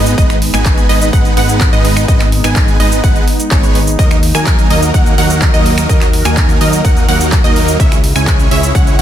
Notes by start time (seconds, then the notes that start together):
Already playing: G#1 G#3 B3 D#4 B4 D#5
0.06 closed hi-hat, cabasa
0.18 G#1 G#3 B3 D#4 B4 D#5, kick, closed hi-hat, cabasa
0.30 finger snap, closed hi-hat, cabasa
0.42 open hi-hat
0.54 G#1 G#3 B3 D#4 B4 G#5, finger snap, cabasa
0.65 kick, clap, closed hi-hat, cabasa
0.78 closed hi-hat, cabasa
0.89 G#1 G#3 B3 D#4 B4 D#5, open hi-hat
1.01 closed hi-hat, cabasa
1.13 G#1 G#3 B3 D#4 B4 F#5, kick, closed hi-hat, cabasa
1.25 closed hi-hat, cabasa
1.37 G#1 G#3 B3 D#4 B4 F#5, open hi-hat
1.49 closed hi-hat, cabasa
1.61 kick, clap, closed hi-hat, cabasa
1.73 G#1 G#3 B3 D#4 B4 D#5, closed hi-hat, cabasa
1.85 open hi-hat
1.97 finger snap, cabasa
2.08 G#1 G#3 B3 D#4 B4 D#5, kick, closed hi-hat, cabasa
2.20 finger snap, clap, closed hi-hat, cabasa
2.32 open hi-hat
2.44 G#1 G#3 B3 D#4 B4 G#5, finger snap, closed hi-hat, cabasa
2.56 kick, clap, closed hi-hat, cabasa
2.68 closed hi-hat, cabasa
2.80 G#1 G#3 B3 D#4 B4 D#5, open hi-hat
2.92 closed hi-hat, cabasa
3.04 G#1 G#3 B3 D#4 B4 F#5, kick, closed hi-hat, cabasa
3.16 closed hi-hat, cabasa
3.28 open hi-hat
3.40 closed hi-hat, cabasa
3.51 G#1 G#3 B3 D#4 B4 C#5, kick, clap, closed hi-hat, cabasa
3.63 closed hi-hat, cabasa
3.75 open hi-hat
3.87 closed hi-hat, cabasa
3.99 D#2 D#3 F#3 A#3 D#4 F#4 A#4 D#5, kick, closed hi-hat, cabasa
4.11 finger snap, closed hi-hat, cabasa
4.23 open hi-hat
4.35 D#2 F#3 A#3 D#4 A#4 G#5, finger snap, cabasa
4.47 kick, clap, closed hi-hat, cabasa
4.59 closed hi-hat, cabasa
4.70 D#2 F#3 A#3 D#4 A#4 D#5, open hi-hat
4.82 closed hi-hat, cabasa
4.94 D#2 F#3 A#3 D#4 A#4 F#5, kick, closed hi-hat, cabasa
5.06 closed hi-hat, cabasa
5.18 D#2 F#3 A#3 D#4 A#4 F#5, open hi-hat
5.30 closed hi-hat, cabasa
5.42 kick, clap, closed hi-hat, cabasa
5.54 D#2 F#3 A#3 D#4 A#4 D#5, closed hi-hat, cabasa
5.66 open hi-hat
5.78 finger snap, cabasa
5.89 D#2 F#3 A#3 D#4 A#4 D#5, kick, closed hi-hat, cabasa
6.01 finger snap, clap, closed hi-hat, cabasa
6.13 open hi-hat
6.25 D#2 F#3 A#3 D#4 A#4 G#5, finger snap, cabasa
6.37 kick, clap, closed hi-hat, cabasa
6.49 closed hi-hat, cabasa
6.61 D#2 F#3 A#3 D#4 A#4 D#5, open hi-hat
6.73 closed hi-hat, cabasa
6.84 D#2 F#3 A#3 D#4 A#4 F#5, kick, closed hi-hat, cabasa
6.97 closed hi-hat, cabasa
7.08 D#2 F#3 A#3 D#4 A#4 F#5, open hi-hat
7.21 closed hi-hat, cabasa
7.32 kick, clap, closed hi-hat, cabasa
7.44 D#2 F#3 A#3 D#4 A#4 D#5, closed hi-hat, cabasa
7.56 open hi-hat
7.68 closed hi-hat, cabasa
7.80 C#2 C#3 G#3 C#4 E4 G#4 C#5 E5, kick, closed hi-hat, cabasa
7.92 finger snap, closed hi-hat, cabasa
8.04 open hi-hat
8.15 C#2 G#3 C#4 E4 C#5 G#5, finger snap, cabasa
8.27 kick, clap, closed hi-hat, cabasa
8.39 closed hi-hat, cabasa
8.51 C#2 G#3 C#4 E4 C#5 E5, open hi-hat
8.63 closed hi-hat, cabasa
8.75 C#2 G#3 C#4 E4 C#5 F#5, kick, closed hi-hat, cabasa
8.87 closed hi-hat, cabasa
8.99 C#2